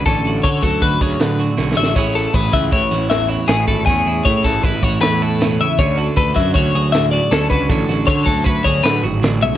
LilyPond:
<<
  \new Staff \with { instrumentName = "Clean electric guitar" } { \time 5/4 \key d \lydian \tempo 4 = 157 a'4 cis''8 a'8 b'8 cis''8 b'8 r4 e''8 | cis''8 a'8 b'8 e''8 cis''4 e''8 cis''8 gis'8 a'8 | gis'4 cis''8 a'8 b'8 cis''8 b'8 a'4 e''8 | cis''8 a'8 b'8 e''8 cis''4 e''8 d''8 a'8 b'8 |
a'4 cis''8 a'8 b'8 cis''8 b'8 r4 e''8 | }
  \new Staff \with { instrumentName = "Clean electric guitar" } { \time 5/4 \key d \lydian << { cis'8 fis'8 a'4 fis'8 gis'4 fis'8 cis'8 fis'8 | <e cis' e' gis'>8 e'8 gis'4 e'8 fis'4 e'8 cis'8 e'8 | cis'8 e'8 gis'4 e'8 fis'4 e'4. | cis'8 fis'8 a'4 fis'8 gis'4 fis'8 cis'8 fis'8 |
cis'8 fis'8 a'4 fis'8 gis'4 fis'4. | } \\ { d4. fis4. a,4 d4 | a,4. e4. e,4 a,4 | a,4. e4. e,4 b,8 cis8 | d4. fis4. a,4 d4 |
d4. fis4. a,4 d8 cis8 | } >> }
  \new Staff \with { instrumentName = "Picked electric bass" } { \clef bass \time 5/4 \key d \lydian a,,8 a,,8 d8 d,8 d,8 d,8 d4 b,,8 a,,8 | a,,4 a,,8 cis,8 a,,8 a,,4. a,,8 gis,,8 | e,8 e,8 a,8 a,,8 a,,8 a,,8 a,2 | d,4 d,8 fis,8 d,8 d,4. d,8 cis,8 |
a,,8 a,,8 d8 d,8 d,8 d,8 d8 gis,,8 a,,8 b,,8 | }
  \new DrumStaff \with { instrumentName = "Drums" } \drummode { \time 5/4 <hh bd>8 hh8 <hh bd>8 <hh bd>8 <hh bd>8 <hh bd>8 <hh sn>8 <hh sn>8 \tuplet 3/2 { sn8 sn8 sn8 } | <hh bd>8 <hh sn>8 <hh bd>8 <hh bd>8 <hh bd>8 <hh sn>8 <hh sn>8 <hh sn>8 <hh sn>8 <hh bd sn>8 | <hh bd>8 hh8 <hh bd>8 <hh bd>8 <hh bd sn>8 <hh bd>8 <hh sn>8 hh8 <hh sn>8 hh8 | <hh bd>8 hh8 <hh bd>8 <hh bd sn>8 <hh bd sn>8 hh8 <hh sn>8 hh8 <hh sn>8 <hh bd>8 |
<hh bd>8 <hh sn>8 <hh bd sn>8 <hh bd>8 <hh bd>8 <hh bd>8 <hh sn>8 hh8 <hh sn>8 tommh8 | }
>>